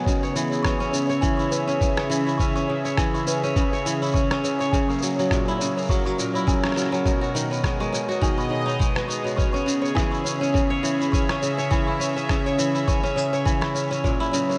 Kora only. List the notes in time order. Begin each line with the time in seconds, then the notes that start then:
Already playing: D#3 F#3 B3 F#4
0.07 C#3
0.23 C#5
0.36 E3
0.51 E4
0.64 C#4
0.80 C#4
0.93 C#3
1.09 C#5
1.22 E3
1.39 E4
1.52 C#4
1.68 C#4
1.81 C#3
1.97 C#5
2.10 E3
2.27 E4
2.40 C#4
2.55 C#4
2.70 C#3
2.85 C#5
2.98 E3
3.14 E4
3.27 C#4
3.44 C#4
3.56 C#3
3.73 C#5
3.86 E3
4.02 E4
4.15 C#4
4.31 C#4
4.44 C#3
4.60 C#5
4.74 C#3
4.89 A#3
5.03 F#3
5.19 F#3
5.32 A#2
5.48 E4
5.61 C#3
5.78 A#3
5.90 F#3
6.06 F#3
6.19 A#2
6.35 E4
6.47 C#3
6.64 A#3
6.77 F#3
6.92 F#3
7.05 B2
7.21 F#4
7.35 D#3
7.51 B3
7.63 G#3
7.80 G#3
7.92 B2
8.09 F#4
8.21 D#3
8.38 B3
8.50 D#3
8.66 D#4
8.79 G#3
8.95 F#4
9.08 D#4
9.24 B2
9.37 C#4
9.54 C#4
9.66 C#3
9.82 C#5
9.95 E3
10.12 E4
10.25 C#4
10.41 C#4
10.54 C#3
10.70 C#5
10.83 E3
11.01 E4
11.14 C#4
11.30 C#4
11.43 C#3
11.58 C#5
11.71 E3
11.87 E4
12.00 C#4
12.17 C#4
12.29 C#3
12.46 C#5
12.59 E3
12.75 E4
12.88 C#4
13.03 C#4
13.16 C#3
13.33 C#5
13.45 E3
13.61 E4
13.75 C#4
13.91 C#4
14.04 A#2
14.20 E4
14.33 C#3
14.49 A#3